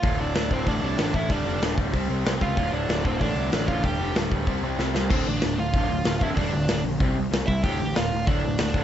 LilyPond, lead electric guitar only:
\new Staff \with { instrumentName = "Lead electric guitar" } { \time 4/4 \key d \minor \tempo 4 = 189 <f' f''>8 <d' d''>4 <c' c''>8 <d' d''>4. <e' e''>8 | <d' d''>4 r2 r8 <f' f''>8~ | <f' f''>8 <d' d''>4 <c' c''>8 <d' d''>4. <f' f''>8 | <g' g''>4 r2. |
<c' c''>8 <d' d''>4 <f' f''>2 <e' e''>8 | <d' d''>4. r2 <e' e''>8 | <g' g''>4 <f' f''>4 <d' d''>4 <d' d''>4 | }